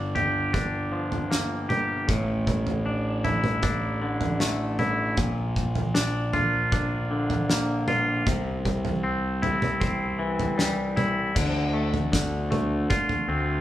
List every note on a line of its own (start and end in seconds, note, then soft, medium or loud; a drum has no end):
0.00 2.04 G1 medium
0.00 0.92 G2 medium
0.00 0.53 D4 soft
0.15 1.68 G4 medium
0.15 floor tom medium
0.53 2.85 D4 soft
0.53 kick medium
0.53 floor tom medium
0.53 mid tom medium
0.92 2.08 F3 medium
1.12 floor tom medium
1.31 2.08 A#3 medium
1.31 snare medium
1.69 2.08 G4 medium
1.69 mid tom medium
2.08 5.13 A1 medium
2.08 4.01 A2 medium
2.08 kick medium
2.08 floor tom medium
2.47 kick medium
2.47 mid tom medium
2.67 floor tom medium
2.86 3.62 D4 medium
3.24 4.78 E4 medium
3.24 floor tom medium
3.44 mid tom medium
3.63 5.17 D4 medium
3.63 kick medium
3.63 floor tom medium
3.63 mid tom medium
4.02 5.17 D3 medium
4.21 floor tom medium
4.40 5.17 A3 medium
4.40 snare medium
4.79 5.17 E4 medium
4.79 mid tom medium
5.17 8.23 A#1 medium
5.17 7.11 A#2 medium
5.17 kick medium
5.17 floor tom medium
5.56 kick medium
5.75 floor tom medium
5.95 6.71 D4 medium
5.95 snare medium
6.33 7.87 F4 medium
6.33 floor tom medium
6.72 8.26 D4 medium
6.72 kick medium
6.72 floor tom medium
6.72 mid tom medium
7.11 8.27 D3 medium
7.30 floor tom medium
7.49 8.27 A#3 medium
7.49 snare medium
7.88 8.26 F4 medium
7.88 mid tom medium
8.27 11.32 C2 medium
8.27 10.20 C3 medium
8.27 kick medium
8.27 floor tom medium
8.65 kick medium
8.65 mid tom medium
8.85 floor tom medium
9.03 9.79 C4 medium
9.42 10.95 E4 medium
9.42 floor tom medium
9.62 mid tom medium
9.80 11.35 C4 medium
9.80 kick medium
9.80 floor tom medium
9.80 mid tom medium
10.19 11.35 E3 medium
10.39 floor tom medium
10.58 11.35 G3 medium
10.58 snare medium
10.96 11.35 E4 medium
10.96 mid tom medium
11.35 12.86 D2 medium
11.35 12.11 D3 medium
11.35 kick medium
11.35 floor tom medium
11.35 crash medium
11.74 12.50 A3 medium
11.94 floor tom medium
12.12 13.61 D3 medium
12.12 kick medium
12.12 snare medium
12.51 13.61 A3 medium
12.51 floor tom medium
12.51 mid tom medium
12.90 13.61 F4 medium
12.90 kick medium
12.90 mid tom medium
13.09 floor tom medium
13.28 13.61 D2 medium
13.28 13.61 C4 soft